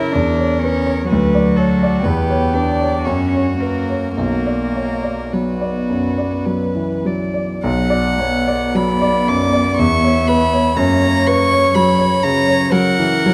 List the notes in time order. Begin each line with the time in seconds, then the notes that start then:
Already playing: F#2 C#3 C#4 E4 A#4 B4 C#5 E5
0.13 E2 D4 D5
0.38 C#5
0.59 C#4 C#5
0.64 B4
0.86 C#5
1.06 F#3 F#4 B4
1.12 D2
1.35 D5
1.56 A4 C#5
1.83 D5
2.02 E2 B3 G4 B4
2.30 C#5
2.53 D4 B4 D5
2.81 C#5
3.04 F#2 C#4 F#4 C#5
3.35 C#5
3.59 A#3 A#4 B4
3.90 C#5
4.15 B1 A#3 F#4 A#4
4.46 D5
4.75 C#5
5.03 D5
5.33 F#3 B3 F#4 B4
5.61 D5
5.90 F#2
6.18 D5
6.45 F#3 B4
6.75 E3
7.05 F#3 D5
7.34 D5
7.62 B1 F#3 F#5
7.90 D5
8.19 B3 C#5
8.48 D5
8.74 F#3 D5 B5
9.02 D5
9.28 F#2 D6
9.53 D5
9.77 E2 E5 C#6
10.04 C#5
10.27 B4 B5
10.53 C#5
10.76 F#2 A#3 C#5 A#5
11.02 C#5
11.27 B4 C#6
11.51 C#5
11.74 F#3 B5
11.99 C#5
12.23 C#3 A#5
12.48 C#5
12.71 F#3 A#4 F#5
12.99 E3
13.26 F#3